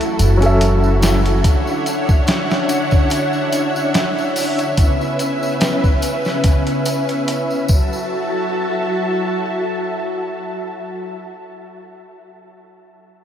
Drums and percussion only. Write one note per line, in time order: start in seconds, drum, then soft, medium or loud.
0.01 closed hi-hat soft
0.01 tambourine soft
0.19 closed hi-hat medium
0.19 tambourine medium
0.42 closed hi-hat soft
0.42 tambourine soft
0.61 closed hi-hat medium
0.61 tambourine soft
0.84 tambourine soft
1.02 snare loud
1.02 closed hi-hat medium
1.02 tambourine medium
1.25 closed hi-hat soft
1.25 tambourine soft
1.44 kick loud
1.44 closed hi-hat medium
1.44 tambourine medium
1.67 tambourine soft
1.86 closed hi-hat medium
1.86 tambourine medium
2.09 kick loud
2.09 tambourine soft
2.27 snare loud
2.27 closed hi-hat medium
2.27 tambourine soft
2.51 snare medium
2.51 tambourine soft
2.69 closed hi-hat medium
2.69 tambourine medium
2.91 kick medium
2.91 tambourine soft
3.10 closed hi-hat medium
3.10 tambourine medium
3.33 tambourine soft
3.52 closed hi-hat medium
3.52 tambourine medium
3.76 tambourine soft
3.94 snare loud
3.94 closed hi-hat medium
3.94 tambourine medium
4.18 tambourine soft
4.36 open hi-hat medium
4.36 tambourine medium
4.58 closed hi-hat soft
4.58 tambourine soft
4.77 kick loud
4.77 closed hi-hat medium
4.77 tambourine soft
5.01 tambourine soft
5.19 closed hi-hat medium
5.19 tambourine medium
5.43 tambourine soft
5.60 snare loud
5.60 closed hi-hat medium
5.60 tambourine soft
5.84 kick medium
5.84 tambourine soft
6.02 closed hi-hat medium
6.02 tambourine medium
6.25 snare soft
6.25 tambourine soft
6.44 kick loud
6.44 closed hi-hat medium
6.44 tambourine soft
6.67 closed hi-hat soft
6.67 tambourine soft
6.85 closed hi-hat medium
6.85 tambourine medium
7.09 closed hi-hat soft
7.09 tambourine soft
7.28 closed hi-hat medium
7.28 tambourine soft
7.50 tambourine soft
7.68 kick loud
7.68 tambourine medium
7.93 tambourine soft